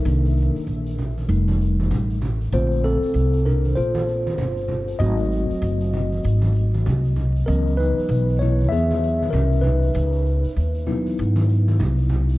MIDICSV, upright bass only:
0, 0, Header, 1, 3, 480
1, 0, Start_track
1, 0, Tempo, 618557
1, 40, Time_signature, 4, 2, 24, 8
1, 9607, End_track
2, 0, Start_track
2, 0, Title_t, "Upright bass"
2, 0, Program_c, 0, 32
2, 41, Note_on_c, 0, 36, 99
2, 409, Note_off_c, 0, 36, 0
2, 518, Note_on_c, 0, 34, 77
2, 975, Note_off_c, 0, 34, 0
2, 998, Note_on_c, 0, 29, 89
2, 1455, Note_off_c, 0, 29, 0
2, 1480, Note_on_c, 0, 33, 85
2, 1936, Note_off_c, 0, 33, 0
2, 1959, Note_on_c, 0, 34, 99
2, 2328, Note_off_c, 0, 34, 0
2, 2436, Note_on_c, 0, 36, 92
2, 2894, Note_off_c, 0, 36, 0
2, 2920, Note_on_c, 0, 34, 75
2, 3398, Note_off_c, 0, 34, 0
2, 3398, Note_on_c, 0, 31, 79
2, 3855, Note_off_c, 0, 31, 0
2, 3877, Note_on_c, 0, 32, 93
2, 4247, Note_off_c, 0, 32, 0
2, 4360, Note_on_c, 0, 30, 91
2, 4816, Note_off_c, 0, 30, 0
2, 4846, Note_on_c, 0, 32, 87
2, 5299, Note_off_c, 0, 32, 0
2, 5325, Note_on_c, 0, 36, 88
2, 5778, Note_off_c, 0, 36, 0
2, 5802, Note_on_c, 0, 37, 99
2, 6170, Note_off_c, 0, 37, 0
2, 6275, Note_on_c, 0, 35, 98
2, 6753, Note_off_c, 0, 35, 0
2, 6753, Note_on_c, 0, 40, 82
2, 7212, Note_off_c, 0, 40, 0
2, 7238, Note_on_c, 0, 36, 85
2, 7695, Note_off_c, 0, 36, 0
2, 7717, Note_on_c, 0, 37, 107
2, 8088, Note_off_c, 0, 37, 0
2, 8198, Note_on_c, 0, 39, 83
2, 8655, Note_off_c, 0, 39, 0
2, 8683, Note_on_c, 0, 44, 97
2, 9138, Note_off_c, 0, 44, 0
2, 9160, Note_on_c, 0, 36, 91
2, 9607, Note_off_c, 0, 36, 0
2, 9607, End_track
3, 0, Start_track
3, 0, Title_t, "Muted upright bass strokes"
3, 428, Note_on_c, 9, 29, 43
3, 506, Note_off_c, 9, 29, 0
3, 2345, Note_on_c, 9, 29, 42
3, 2423, Note_off_c, 9, 29, 0
3, 4271, Note_on_c, 9, 29, 43
3, 4348, Note_off_c, 9, 29, 0
3, 6190, Note_on_c, 9, 29, 45
3, 6267, Note_off_c, 9, 29, 0
3, 8106, Note_on_c, 9, 29, 38
3, 8183, Note_off_c, 9, 29, 0
3, 9607, End_track
0, 0, End_of_file